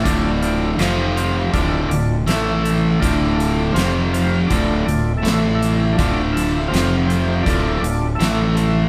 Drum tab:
HH |xxxxxxxx|xxxxxxxx|xxxxxxxx|
SD |--o---o-|--o---o-|--o---o-|
BD |o---o---|o---o---|o---o---|